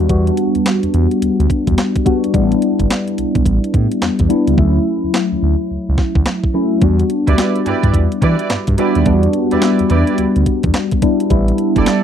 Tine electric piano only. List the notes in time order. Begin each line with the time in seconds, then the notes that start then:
Already playing: G3 B3 D4 F#4
0.09 G3 B3 D4 F#4
2.05 G3 B3 D4 F#4
2.34 G3 B3 D4 D#4
2.42 E4
4.29 G3 B3 D4 E4
4.57 F#3 A3 C#4 E4
6.54 F#3 A3 C#4 E4
6.82 G3 B3 D4 F#4
8.78 G3 B3 D4 F#4
9.06 G3 B3 D4 F#4
11.02 G3 B3 D4 E4
11.30 G3 B3 D4 E4